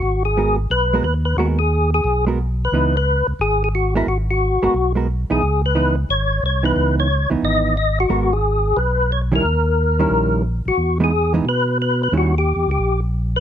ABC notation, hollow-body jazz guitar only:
X:1
M:4/4
L:1/8
Q:"Swing" 1/4=179
K:G#m
V:1 name="Hollow-body jazz guitar"
z2 [G,B,FA] z2 [G,B,FA] z2 | [G,B,FA] z4 [G,B,FA] z2 | [E,B,D] z6 [G,B,FA] | z3 [G,B,FA] z [G,B,FA] z [E,B,D] |
z2 [E,B,D] z4 [E,B,D]- | [E,B,D]2 z [E,B,D]3 z2 | [G,B,FA] z6 [D,=G,CE] | z3 [D,=G,CE]3 z2 |
z [E,G,B,D] z [E,G,B,D] z4 | [D,=G,CE] z6 z |]